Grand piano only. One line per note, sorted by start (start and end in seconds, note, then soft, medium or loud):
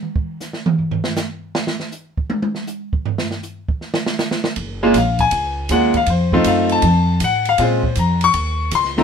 4.83 4.94 G#3 medium
4.83 4.94 A#3 medium
4.83 4.94 C#4 medium
4.83 4.94 F4 loud
4.98 5.20 F5 medium
5.21 5.67 G#5 loud
5.71 5.93 G#3 medium
5.71 5.93 A#3 medium
5.71 5.93 C#4 medium
5.71 5.93 F4 medium
5.71 5.95 F#5 medium
5.97 6.08 F5 medium
6.10 6.44 C5 medium
6.33 6.81 A3 medium
6.33 6.81 C4 medium
6.33 6.81 D#4 medium
6.33 6.81 F4 loud
6.48 6.71 F5 medium
6.72 7.18 A5 loud
7.24 7.47 F#5 loud
7.49 7.60 F5 loud
7.59 7.82 G#3 medium
7.59 7.82 C4 medium
7.59 7.82 C#4 medium
7.59 7.82 F4 medium
7.59 7.95 C5 medium
7.99 8.22 A#5 medium
8.24 8.70 C#6 loud
8.75 8.98 C6 loud
8.98 9.04 A3 medium
8.98 9.04 C4 medium
8.98 9.04 D#4 medium
8.98 9.04 F4 medium
8.98 9.04 A#5 medium